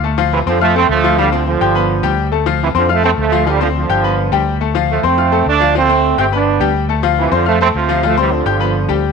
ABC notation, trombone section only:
X:1
M:4/4
L:1/8
Q:1/4=210
K:Ddor
V:1 name="Trombone section" clef=bass
z2 [C,E,] [D,F,] [F,A,] [A,C] [F,A,]2 | [D,G,] [D,F,] [D,F,]4- [D,F,] z | z2 [C,E,] [D,F,] [F,A,] [A,C] [F,A,]2 | [D,G,] [D,F,] [D,F,]4- [D,F,] z |
z2 [F,A,] [A,C]3 [A,D]2 | [A,C]3 [A,C] [B,D]3 z | z2 [C,E,] [D,F,] [F,A,] [A,C] [C,F,]2 | [F,A,] [E,G,] [D,F,]4- [D,F,] z |]